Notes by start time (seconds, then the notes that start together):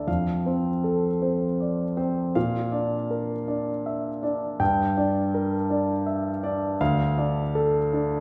0.07 F2 F5
0.46 C4 C5
0.84 A4
1.22 C4 C5
1.60 D5
1.97 C4 C5
2.35 A#2 F5
2.72 D4 D5
3.10 A#4
3.48 D4 D5
3.86 E5
4.23 D4 D5
4.60 G2 G5
4.97 D4 D5
5.34 A#4
5.70 D4 D5
6.06 E5
6.43 D4 D5
6.81 D2 F5
7.18 D4 D5
7.55 A4
7.93 D4 D5